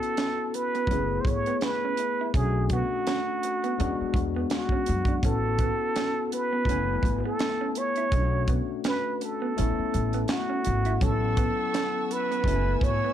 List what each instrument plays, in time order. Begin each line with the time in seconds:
Already playing: tine electric piano B3 C#4 E4 F#4, muted trumpet A4
0.03 closed hi-hat
0.17 clean electric guitar C#4, snare, clap, closed hi-hat
0.54 muted trumpet B4, muted clean electric guitar stroke, closed hi-hat
0.75 clean electric guitar B3, closed hi-hat
0.87 upright bass F#1, tine electric piano G#3 B3, clean electric guitar C#4, kick, closed hi-hat
0.91 tine electric piano E4 G#4
0.96 tine electric piano A3
1.21 muted trumpet C5, kick
1.26 upright bass G#1, muted trumpet C#5, muted clean electric guitar stroke, closed hi-hat
1.46 clean electric guitar B3, closed hi-hat
1.61 muted trumpet B4, snare, clap, closed hi-hat
1.85 clean electric guitar C#4
1.97 muted clean electric guitar stroke, closed hi-hat
2.21 clean electric guitar E4
2.34 upright bass B1, tine electric piano A3 C#4 D4 F#4, clean electric guitar C#4, muted trumpet G#4, kick, closed hi-hat
2.70 clean electric guitar B3, muted trumpet F#4, kick, closed hi-hat
3.07 clean electric guitar C#4, snare, clap, closed hi-hat
3.43 muted clean electric guitar stroke, closed hi-hat
3.64 clean electric guitar B3, closed hi-hat
3.79 upright bass E2, tine electric piano G#3 B3 D4 F#4, clean electric guitar C#4, closed hi-hat
4.01 muted upright bass stroke
4.14 upright bass E2, muted clean electric guitar stroke, kick, closed hi-hat
4.36 clean electric guitar B3
4.50 muted trumpet F#4, snare, clap, closed hi-hat
4.69 clean electric guitar C#4, muted upright bass stroke, kick
4.86 upright bass F#2, muted clean electric guitar stroke, closed hi-hat
5.05 clean electric guitar D4, kick, closed hi-hat
5.23 upright bass A1, tine electric piano B3 C#4 E4 F#4, clean electric guitar C#4, muted trumpet A4, kick, closed hi-hat
5.59 clean electric guitar B3, kick, closed hi-hat
5.96 clean electric guitar C#4, snare, clap, closed hi-hat
6.32 muted trumpet B4, muted clean electric guitar stroke, closed hi-hat
6.53 clean electric guitar B3
6.65 upright bass F#1, tine electric piano A3 B3, clean electric guitar C#4, kick, closed hi-hat
6.70 tine electric piano E4 G#5
7.03 upright bass G#1, muted clean electric guitar stroke, kick, closed hi-hat
7.25 clean electric guitar B3, muted trumpet A4
7.39 snare, clap, closed hi-hat
7.61 clean electric guitar C#4
7.75 muted trumpet C#5, muted clean electric guitar stroke, closed hi-hat
7.96 clean electric guitar E4, closed hi-hat
8.12 upright bass B1, tine electric piano A3 C#4 D4, clean electric guitar C#4, kick, closed hi-hat
8.16 tine electric piano F4
8.23 tine electric piano F#4
8.48 clean electric guitar B3, kick, closed hi-hat
8.84 clean electric guitar C#4, muted trumpet B4, snare, clap, closed hi-hat
9.21 muted trumpet A4, muted clean electric guitar stroke, closed hi-hat
9.42 clean electric guitar B3
9.57 upright bass A1, tine electric piano A3 B3 C#4 E4, clean electric guitar C#4, closed hi-hat
9.79 muted upright bass stroke
9.94 upright bass A1, muted clean electric guitar stroke, closed hi-hat
10.13 clean electric guitar B3, closed hi-hat
10.28 muted trumpet F#4, snare, clap, closed hi-hat
10.50 clean electric guitar C#4
10.64 upright bass G#1, muted clean electric guitar stroke, closed hi-hat
10.85 clean electric guitar E4, closed hi-hat
11.01 upright bass A1, tine electric piano F#3 B3 C#4 D#4, clean electric guitar C#4, string section A4 F#5 C#6 E6, muted trumpet A4, kick, closed hi-hat
11.11 tine electric piano E4
11.37 clean electric guitar B3, kick, closed hi-hat
11.74 clean electric guitar C#4, snare, clap, closed hi-hat
12.11 muted trumpet B4, muted clean electric guitar stroke, closed hi-hat
12.31 clean electric guitar B3, closed hi-hat
12.44 upright bass F#1, tine electric piano A3 B3, clean electric guitar C#4, string section G#5 B5 E6, kick, closed hi-hat
12.48 tine electric piano E4 F#4
12.56 tine electric piano G#5
12.81 upright bass G#1, muted trumpet C#5, muted clean electric guitar stroke, kick, closed hi-hat
13.04 clean electric guitar B3